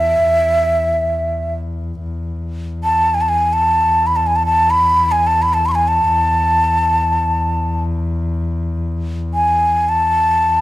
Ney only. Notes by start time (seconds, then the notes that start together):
Already playing: E5
2.84 A5
3.14 G#5
3.21 A5
3.29 G#5
3.53 A5
4.07 B5
4.16 A5
4.27 G#5
4.36 A5
4.46 A5
4.70 B5
5.11 G#5
5.27 A5
5.42 B5
5.54 A5
5.66 B5 C#6
5.75 G#5
5.88 A5
9.34 G#5
9.89 A5